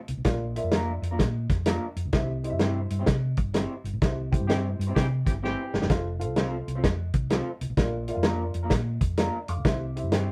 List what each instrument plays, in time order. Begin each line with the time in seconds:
0.08 fingered electric bass C2, closed hi-hat
0.17 fingered electric bass B1
0.24 fingered electric bass A#1, upright piano A#2 F4 A#4 D5 F5, kick, snare, closed hi-hat
0.56 upright piano F4 A#4 D5 E5, closed hi-hat
0.64 fingered electric bass F2
0.71 clean electric guitar A#3 D4 F4 A#4, snare, closed hi-hat
1.02 fingered electric bass F2, closed hi-hat
1.11 clean electric guitar A#3 D4 F4 A#4
1.19 fingered electric bass A#2, kick, snare, closed hi-hat
1.50 fingered electric bass F2, kick, snare, closed hi-hat
1.66 clean electric guitar A#3 D4 F4 A#4, snare, closed hi-hat
1.96 fingered electric bass F2, closed hi-hat
2.05 fingered electric bass C#2
2.12 fingered electric bass C2, upright piano C3 E4 G4 C5 E5, kick, snare, closed hi-hat
2.44 upright piano E4 G4 C5 D#5, closed hi-hat
2.50 fingered electric bass G2, upright piano E5
2.59 clean electric guitar C4 E4 G4 C5, snare, closed hi-hat
2.90 fingered electric bass G2, closed hi-hat
2.99 clean electric guitar C4 E4 G4 C5
3.06 fingered electric bass C3, kick, snare, closed hi-hat
3.37 fingered electric bass G1, kick, closed hi-hat
3.54 clean electric guitar C4 E4 G4 C5, snare, closed hi-hat
3.84 fingered electric bass G1, closed hi-hat
3.93 fingered electric bass A1
4.01 fingered electric bass C2, upright piano C3 E4 G4 C5 E5, kick, snare, closed hi-hat
4.31 upright piano E4 G4 C5 G5, kick, closed hi-hat
4.40 fingered electric bass G2
4.48 horn section E3 C4 G4, clean electric guitar C4 E4 G4 C5, snare, closed hi-hat
4.79 fingered electric bass G2, closed hi-hat
4.87 clean electric guitar C4 E4 G4 C5
4.96 fingered electric bass C3, horn section E3 C4 G4, kick, snare, closed hi-hat
5.26 fingered electric bass G1, horn section E3 C4 G4, kick, snare, closed hi-hat
5.43 horn section E3 C4 G4, clean electric guitar C4 E4 G4 C5, snare
5.73 fingered electric bass G1, snare
5.82 fingered electric bass F#1, snare
5.89 fingered electric bass F1, upright piano F4 A4 C5 F5, kick, snare, closed hi-hat
6.19 upright piano F4 A4 C5 F5, closed hi-hat
6.28 fingered electric bass C2
6.36 clean electric guitar C4 F4 A4 C5, snare, closed hi-hat
6.68 fingered electric bass C2, closed hi-hat
6.75 clean electric guitar C4 F4 A4 C5
6.84 fingered electric bass F2, kick, snare, closed hi-hat
7.13 fingered electric bass C2, kick, closed hi-hat
7.30 clean electric guitar C4 F4 A4 C5, snare, closed hi-hat
7.61 fingered electric bass C2, closed hi-hat
7.70 fingered electric bass B1
7.77 fingered electric bass A#1, upright piano A#2 F4 A#4 D5 F5, kick, snare, closed hi-hat
8.08 upright piano F4 A#4 D5 E5, closed hi-hat
8.14 fingered electric bass F2, upright piano F5
8.23 clean electric guitar A#3 D4 F4 A#4, snare, closed hi-hat
8.54 fingered electric bass F2, closed hi-hat
8.63 clean electric guitar A#3 D4 F4 A#4
8.70 fingered electric bass A#2, kick, snare, closed hi-hat
9.01 fingered electric bass F2, kick, closed hi-hat
9.17 clean electric guitar A#3 D4 F4 A#4, upright piano D5 A#5, snare, closed hi-hat
9.48 fingered electric bass F2, upright piano F5 D6, closed hi-hat
9.57 fingered electric bass C#2
9.65 fingered electric bass C2, upright piano C3 E4 G4 C5 E5, kick, snare, closed hi-hat
9.96 upright piano E4 G4 C5 E5, closed hi-hat
10.03 fingered electric bass G2
10.12 clean electric guitar C4 E4 G4 C5, snare, closed hi-hat